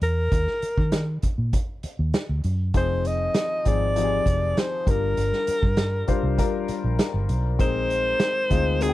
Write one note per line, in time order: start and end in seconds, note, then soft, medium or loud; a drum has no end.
0.02 0.28 E2 medium
0.02 1.20 A#4 medium
0.02 closed hi-hat medium
0.32 0.45 D#2 medium
0.32 kick medium
0.32 closed hi-hat medium
0.47 snare soft
0.62 muted fingered electric bass stroke soft
0.62 closed hi-hat medium
0.78 1.18 D#3 medium
0.78 kick medium
0.92 snare medium
0.92 closed hi-hat medium
1.22 muted fingered electric bass stroke soft
1.22 kick medium
1.22 closed hi-hat medium
1.38 1.51 A#2 medium
1.53 kick medium
1.53 closed hi-hat medium
1.83 muted fingered electric bass stroke soft
1.83 closed hi-hat medium
1.99 2.12 D#2 medium
2.14 snare medium
2.14 closed hi-hat medium
2.29 2.42 D2 medium
2.44 2.71 F#2 medium
2.44 closed hi-hat medium
2.74 3.28 F1 medium
2.74 3.50 F3 medium
2.74 3.50 C4 medium
2.74 3.51 D#4 medium
2.74 3.51 G#4 medium
2.74 3.09 C5 medium
2.74 kick medium
2.74 closed hi-hat medium
3.05 3.69 D#5 medium
3.05 closed hi-hat medium
3.34 snare medium
3.34 closed hi-hat medium
3.65 4.19 G#1 medium
3.65 3.90 F3 medium
3.65 3.91 C4 medium
3.65 3.91 D#4 soft
3.65 3.91 G#4 medium
3.65 4.61 D5 loud
3.65 kick medium
3.65 closed hi-hat medium
3.96 4.87 F3 medium
3.96 4.87 C4 medium
3.96 4.87 D#4 medium
3.96 4.03 G4 medium
3.96 closed hi-hat medium
4.04 4.91 G#4 medium
4.26 4.53 F1 medium
4.26 kick medium
4.26 closed hi-hat medium
4.57 4.92 C5 medium
4.57 snare medium
4.57 closed hi-hat medium
4.86 5.14 G1 medium
4.86 5.88 G3 medium
4.86 5.88 D4 medium
4.86 5.88 F4 soft
4.86 5.88 A#4 medium
4.86 kick medium
4.86 closed hi-hat medium
4.90 6.70 A#4 medium
5.17 5.31 G1 medium
5.17 closed hi-hat medium
5.33 snare soft
5.47 muted fingered electric bass stroke soft
5.47 closed hi-hat medium
5.63 6.03 G2 medium
5.63 kick medium
5.77 snare medium
5.77 closed hi-hat medium
6.07 6.33 G3 medium
6.07 6.33 D4 medium
6.07 6.33 F4 medium
6.07 6.34 C5 medium
6.07 muted fingered electric bass stroke soft
6.07 kick medium
6.07 closed hi-hat medium
6.23 6.36 C2 medium
6.38 7.39 G3 medium
6.38 7.39 D4 medium
6.38 7.40 F4 medium
6.38 7.40 A#4 medium
6.38 kick medium
6.38 closed hi-hat medium
6.68 muted fingered electric bass stroke soft
6.68 closed hi-hat medium
6.84 6.97 A#1 medium
6.99 snare medium
6.99 closed hi-hat medium
7.14 7.27 G1 medium
7.29 7.60 B1 medium
7.29 closed hi-hat medium
7.59 8.13 A#1 medium
7.59 8.35 G#3 medium
7.59 8.35 C4 medium
7.59 8.35 D#4 medium
7.59 8.36 A#4 medium
7.59 8.83 C5 loud
7.59 kick medium
7.59 closed hi-hat medium
7.90 closed hi-hat medium
8.19 snare medium
8.19 closed hi-hat medium
8.50 8.93 D2 medium
8.50 8.75 G#3 medium
8.50 8.76 C4 medium
8.50 8.76 D#4 medium
8.50 8.76 F4 medium
8.50 kick medium
8.50 closed hi-hat medium
8.81 8.93 G#3 medium
8.81 8.93 C4 medium
8.81 8.93 D#4 medium
8.81 8.88 F#4 medium
8.81 8.93 G#4 medium
8.81 closed hi-hat medium
8.89 8.93 G5 medium